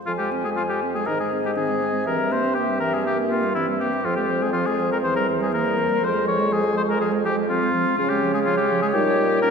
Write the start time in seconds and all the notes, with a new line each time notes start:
0.06 F2 F3 F4 G#5
0.18 G#3 G4
0.31 C4
0.44 G#3 G#4
0.57 F3 F4
0.69 G#3 G4
0.83 C4
0.94 G#3 G#4
1.06 G#2 D#3 D#4 A#4 D#5
1.20 G#3 G#4
1.32 C4
1.44 G#3 G4
1.56 D#3 C4 G#4
1.69 G#3
1.82 C4
1.93 G#3
2.05 G2 E3 A#4 E5
2.18 G3
2.31 A#3 C5
2.44 C4
2.54 A#3 G4
2.69 G3
2.80 E3 A#4
2.94 G3 G#4
3.05 A#3 G4
3.18 C4
3.30 A#3 F4
3.42 G3
3.55 E3 C4 E4
3.68 G3
3.79 A#3 G4
3.93 C4
4.04 F2 F3 C4 F4 C5
4.16 G#3 G4
4.28 F3
4.41 G#3 G#4
4.53 F3 F4
4.66 G#3 G#4
4.79 F3
4.92 G#3 A#4
5.03 E2 E3 C5
5.16 G3 A#4
5.28 E3
5.40 G3 G#4
5.52 E3 A#3 A#4
5.65 G3
5.78 E3
5.89 G3
6.00 F2 F3 G#3 C5
6.13 G#3
6.25 F3 C#5
6.39 G#3
6.50 F3 G#4
6.63 G#3
6.76 F3 C5
6.88 G#3 A#4
7.00 F3 G#4
7.11 G#3
7.25 F3 G4
7.36 G#3
7.49 F3 C4 F4
7.62 G#3
7.74 F3
7.86 G#3
7.97 C#3 F3 C#4 F4 C#5
8.09 G#3 G4
8.24 F3
8.34 G#3 G#4
8.44 F3 F4
8.57 G#3 G4
8.71 F3
8.82 G#3 G#4
8.93 A#2 G3 D#4 G4
9.07 G3
9.19 G3
9.30 G3
9.42 G3 C#4 A#4